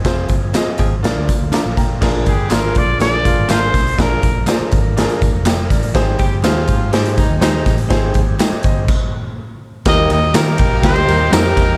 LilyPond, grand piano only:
\new Staff \with { instrumentName = "Grand piano" } { \time 4/4 \key bes \mixolydian \tempo 4 = 122 << { r2. <f'' bes'' d'''>8 <g'' bes''>8~ | <g'' bes''>8 r2. r8 | r2. g''8 <bes' d''>8~ | <bes' d''>8 r2. r8 |
r4 <ees'' g''>8 <c'' ees''>4 r4. | r1 | } \\ { <c' f' aes' c''>8 r8 <c' f' aes' ees''>8 r8 <d' f' bes' d''>8 r4. | <d' f' aes' bes'>8 r8 <d' f' aes' bes'>8 r8 <d' f' aes' bes'>8 r8 <d' f' aes' bes'>8 r8 | <d' f' aes' bes'>8 r8 <d' f' aes' c''>8 r8 <d' f' aes' bes'>8 r4. | <ees' g' aes' c''>8 r8 <ees' g' aes' c''>8 r8 <ees' g' aes' c''>8 r8 <ees' g' aes' c''>8 r8 |
<ees' g' aes' c''>8 r2. r8 | <g bes ees' g' bes'>8 r8 <g bes ees' g' bes'>8 r8 <g bes ees' g' bes'>8 <g bes ees' g' bes'>8 <g bes ees' g' c''>8 r8 | } >> }